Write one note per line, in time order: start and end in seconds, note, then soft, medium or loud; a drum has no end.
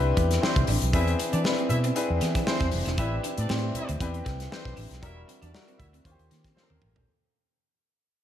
0.00 0.11 C2 medium
0.00 0.42 C4 loud
0.00 0.42 D4 loud
0.00 0.42 E4 loud
0.00 0.43 G4 loud
0.00 0.43 B4 loud
0.17 0.37 E2 loud
0.17 0.26 A3 medium
0.17 kick medium
0.17 closed hi-hat medium
0.17 muted conga soft
0.31 snare soft
0.31 closed hi-hat medium
0.41 0.62 C4 loud
0.41 0.88 C4 medium
0.41 0.88 D4 medium
0.41 0.88 E4 medium
0.41 0.88 G4 medium
0.41 0.88 B4 medium
0.41 0.62 C5 loud
0.41 snare loud
0.41 high conga medium
0.56 0.65 C2 medium
0.56 kick loud
0.56 closed hi-hat soft
0.67 0.79 A1 medium
0.67 0.77 D4 medium
0.67 open hi-hat medium
0.67 high conga medium
0.82 0.91 B1 medium
0.82 closed hi-hat medium
0.93 1.13 E2 loud
0.93 1.39 C4 loud
0.93 1.39 D4 loud
0.93 1.14 E4 loud
0.93 1.39 E4 loud
0.93 1.39 G#4 loud
0.93 1.39 B4 loud
0.93 1.14 E5 loud
0.93 kick loud
0.93 closed hi-hat medium
1.07 muted clean electric guitar stroke soft
1.07 closed hi-hat soft
1.19 1.28 C4 medium
1.19 closed hi-hat medium
1.19 muted conga soft
1.32 1.42 E3 loud
1.32 1.42 D4 medium
1.32 1.40 D4 medium
1.32 1.42 D5 loud
1.32 closed hi-hat soft
1.44 1.90 C4 loud
1.44 1.90 D4 medium
1.44 1.90 E4 medium
1.44 1.90 G#4 medium
1.44 1.91 B4 loud
1.44 snare loud
1.44 high conga medium
1.58 1.66 C4 medium
1.58 closed hi-hat soft
1.69 1.90 B2 loud
1.69 1.78 E4 medium
1.69 1.78 E5 loud
1.69 muted clean electric guitar stroke soft
1.69 closed hi-hat medium
1.69 low conga medium
1.84 1.91 C4 medium
1.84 closed hi-hat soft
1.95 2.41 C4 loud
1.95 2.41 D4 loud
1.95 2.41 E4 loud
1.95 2.41 G#4 loud
1.95 2.42 B4 loud
1.95 muted clean electric guitar stroke soft
1.95 closed hi-hat medium
2.10 2.19 E2 loud
2.21 2.42 E3 loud
2.21 2.31 B3 medium
2.21 snare soft
2.21 closed hi-hat medium
2.21 muted conga soft
2.35 2.43 C4 medium
2.35 kick loud
2.35 snare soft
2.35 closed hi-hat medium
2.47 2.92 C4 loud
2.47 2.68 C4 medium
2.47 2.93 D4 medium
2.47 2.93 E4 medium
2.47 2.93 G#4 medium
2.47 2.68 C5 loud
2.47 2.93 C5 loud
2.47 snare loud
2.47 high conga medium
2.60 2.70 E2 medium
2.60 2.68 C4 medium
2.60 kick loud
2.60 snare soft
2.60 closed hi-hat soft
2.71 2.84 F1 medium
2.71 muted clean electric guitar stroke soft
2.71 open hi-hat medium
2.71 high conga medium
2.85 2.96 E1 loud
2.85 2.93 D4 medium
2.85 snare soft
2.85 closed hi-hat medium
2.98 3.18 A1 loud
2.98 3.44 C4 loud
2.98 3.44 D4 loud
2.98 3.07 E4 medium
2.98 3.44 E4 medium
2.98 3.19 E4 loud
2.98 3.44 G4 loud
2.98 3.44 B4 loud
2.98 3.19 E5 loud
2.98 kick loud
2.98 closed hi-hat loud
3.24 3.32 D4 medium
3.24 closed hi-hat medium
3.24 muted conga soft
3.37 3.47 A2 loud
3.37 3.47 D4 medium
3.37 3.47 D5 loud
3.37 muted clean electric guitar stroke soft
3.37 closed hi-hat medium
3.49 3.70 A2 medium
3.49 3.95 C4 loud
3.49 3.58 C4 loud
3.49 3.95 D4 medium
3.49 3.95 E4 medium
3.49 3.95 G4 medium
3.49 3.95 C5 loud
3.49 snare loud
3.49 high conga medium
3.75 3.87 E4 loud
3.75 3.87 E5 medium
3.75 muted clean electric guitar stroke soft
3.75 closed hi-hat medium
3.75 low conga medium
3.88 3.98 D2 medium
3.88 3.96 C4 medium
3.88 closed hi-hat soft
4.00 4.20 E2 loud
4.00 4.46 C4 loud
4.00 4.46 D4 loud
4.00 4.46 E4 loud
4.00 4.46 G4 loud
4.00 4.46 B4 loud
4.00 kick loud
4.00 closed hi-hat loud
4.14 closed hi-hat soft
4.25 4.46 C2 loud
4.25 4.34 A3 medium
4.25 kick medium
4.25 snare soft
4.25 closed hi-hat medium
4.25 muted conga soft
4.40 snare soft
4.40 closed hi-hat medium
4.51 4.97 C4 medium
4.51 4.72 C4 loud
4.51 4.97 D4 medium
4.51 4.97 E4 medium
4.51 4.97 G4 medium
4.51 4.98 B4 loud
4.51 4.72 C5 loud
4.51 snare loud
4.51 high conga medium
4.65 4.75 B1 loud
4.65 kick medium
4.65 snare soft
4.76 4.88 A1 medium
4.76 4.86 D4 medium
4.76 open hi-hat medium
4.76 high conga medium
4.91 5.00 B1 loud
4.91 snare soft
4.91 closed hi-hat soft
5.02 5.23 E1 medium
5.02 5.48 G3 loud
5.02 5.48 D4 loud
5.02 5.48 E4 medium
5.02 5.23 E4 loud
5.02 5.48 F#4 medium
5.02 5.49 A#4 loud
5.02 5.24 E5 loud
5.02 kick loud
5.02 closed hi-hat medium
5.16 muted clean electric guitar stroke soft
5.28 5.37 C4 medium
5.28 closed hi-hat medium
5.28 muted conga soft
5.41 5.52 E2 loud
5.41 5.51 D4 medium
5.41 5.49 D4 medium
5.41 5.51 D5 medium
5.41 closed hi-hat soft
5.53 5.99 G3 medium
5.53 5.99 D4 medium
5.53 6.00 E4 medium
5.53 6.00 F#4 loud
5.53 6.00 A#4 loud
5.53 snare loud
5.53 high conga medium
5.68 5.75 C4 medium
5.68 closed hi-hat soft
5.78 6.00 D2 medium
5.78 5.87 E4 medium
5.78 5.87 E5 medium
5.78 muted clean electric guitar stroke soft
5.78 kick medium
5.78 closed hi-hat medium
5.78 low conga medium
5.93 6.01 C4 medium
5.93 closed hi-hat medium
6.04 6.16 D#2 loud
6.04 6.50 A#3 loud
6.04 6.51 C#4 medium
6.04 6.51 F4 medium
6.04 6.12 F#4 medium
6.04 6.51 C5 loud
6.04 muted clean electric guitar stroke soft
6.04 kick loud
6.04 closed hi-hat medium
6.11 6.54 G4 medium
6.19 6.28 D#2 medium
6.19 closed hi-hat soft
6.31 6.51 D#3 loud
6.31 6.40 A#3 medium
6.31 snare soft
6.31 closed hi-hat medium
6.44 6.52 C4 medium
6.44 kick medium
6.44 snare soft
6.44 closed hi-hat soft
6.56 7.02 A#3 medium
6.56 6.76 C4 medium
6.56 7.02 C#4 medium
6.56 7.02 F4 medium
6.56 7.02 G4 medium
6.56 6.63 A4 medium
6.56 6.76 C5 loud
6.56 snare medium
6.56 high conga medium
6.63 7.05 A#4 medium
6.70 6.80 D#2 medium
6.70 6.78 C4 medium
6.70 high tom medium
6.82 6.93 A1 medium
6.82 muted clean electric guitar stroke soft
6.82 mid tom loud
6.82 high conga medium
6.96 7.05 A#1 medium
6.96 7.03 C#4 medium
6.96 floor tom medium